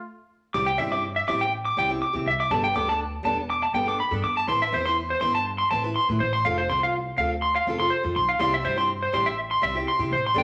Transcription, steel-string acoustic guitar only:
0.54 0.70 G3 medium
0.54 0.70 C4 medium
0.54 0.70 E4 medium
0.54 0.70 G4 medium
0.78 0.91 G3 medium
0.78 0.92 C4 medium
0.78 0.91 E4 medium
0.78 0.91 G4 medium
0.92 1.07 C4 soft
0.92 1.06 E4 medium
0.92 1.06 G4 medium
1.27 1.43 G3 medium
1.27 1.43 C4 medium
1.27 1.44 E4 medium
1.27 1.44 G4 medium
1.77 1.90 G3 medium
1.77 1.89 C4 medium
1.77 1.89 E4 medium
1.77 1.87 G4 medium
1.89 2.05 C4 medium
1.89 2.04 E4 medium
1.89 2.03 G4 medium
2.13 2.29 C4 medium
2.13 2.29 E4 medium
2.13 2.28 G4 medium
2.51 2.66 G3 medium
2.51 2.66 B3 medium
2.51 2.66 D4 medium
2.51 2.67 A4 medium
2.75 2.88 G3 medium
2.75 2.88 B3 medium
2.75 2.88 D4 medium
2.75 2.87 A4 medium
2.88 3.04 B3 soft
2.88 3.03 D4 medium
2.88 3.02 A4 medium
3.23 3.39 G3 medium
3.23 3.40 B3 medium
3.23 3.40 D4 medium
3.23 3.40 A4 medium
3.74 3.87 G3 medium
3.74 3.86 B3 medium
3.74 3.85 A4 medium
3.74 muted steel-string acoustic guitar stroke medium
3.86 4.01 B3 medium
3.86 4.01 D4 medium
3.86 4.00 A4 medium
4.11 4.26 B3 medium
4.11 4.26 D4 medium
4.11 4.25 A4 medium
4.47 4.63 C4 medium
4.47 4.63 E4 medium
4.47 4.63 B4 medium
4.72 4.85 C4 medium
4.72 4.85 E4 medium
4.72 4.85 B4 medium
4.86 5.01 E4 medium
4.86 4.99 B4 medium
5.20 5.36 C4 medium
5.20 5.37 E4 medium
5.20 5.37 B4 medium
5.71 5.83 C4 medium
5.71 5.84 E4 medium
5.71 5.83 B4 medium
5.84 5.98 E4 medium
5.84 5.98 B4 medium
6.10 6.24 E4 medium
6.10 6.23 B4 medium
6.44 6.59 C4 medium
6.44 6.60 F4 medium
6.44 6.60 A4 medium
6.69 6.82 C4 medium
6.69 6.82 F4 medium
6.69 muted steel-string acoustic guitar stroke medium
6.86 6.98 F4 soft
7.17 7.33 C4 medium
7.17 7.34 F4 medium
7.17 7.34 A4 medium
7.67 7.80 C4 medium
7.67 7.80 F4 medium
7.67 7.78 A4 medium
7.79 7.94 F4 medium
7.79 7.93 A4 medium
8.03 8.19 F4 medium
8.03 8.18 A4 medium
8.39 8.55 G3 medium
8.39 8.56 C4 medium
8.39 8.55 E4 medium
8.39 8.55 G4 medium
8.63 8.77 G3 medium
8.63 8.76 E4 medium
8.63 8.76 G4 medium
8.77 8.92 C4 soft
8.77 8.92 E4 medium
8.77 8.91 G4 medium
9.13 9.29 G3 medium
9.13 9.29 C4 medium
9.13 9.29 E4 medium
9.13 9.29 G4 medium
9.62 9.75 G3 medium
9.62 9.76 C4 medium
9.62 9.74 G4 medium
9.75 9.91 C4 medium
9.75 9.91 E4 medium
9.75 9.90 G4 medium
9.99 10.15 C4 soft
9.99 10.14 E4 medium
9.99 10.14 G4 medium
10.34 10.43 G3 medium
10.34 10.43 B3 medium
10.34 10.43 D4 medium
10.34 10.43 A4 loud

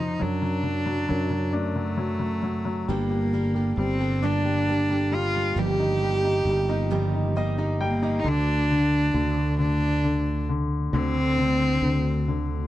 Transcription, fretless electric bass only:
0.00 0.17 F2 medium
0.21 1.07 F#2 medium
1.10 2.85 F#2 medium
2.88 3.74 G1 medium
3.77 5.52 G1 medium
5.56 6.41 G1 medium
6.45 8.20 G1 medium
8.24 9.09 D2 medium
9.14 10.88 D2 medium
10.93 11.78 D2 medium
11.82 12.67 D2 medium

